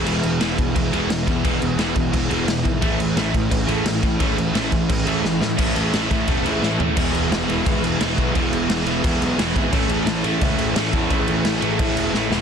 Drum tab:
CC |xxxxxxxx|xxxxxxxx|xxxxxxxx|xxxxxx--|
SD |--o---o-|--o---o-|--o---o-|--o---oo|
FT |--------|--------|--------|--------|
BD |---oo--o|o--oo--o|o--oo--o|o--oo---|

CC |xxxxxx--|xxxxxxxx|xxxxxxxx|xxxxxxxx|
SD |--o---o-|--o---o-|--o---o-|--o---o-|
FT |-------o|--------|--------|--------|
BD |o--oo---|o---o--o|o---o--o|o---o--o|

CC |xxxxxx--|
SD |--o---oo|
FT |--------|
BD |o---o---|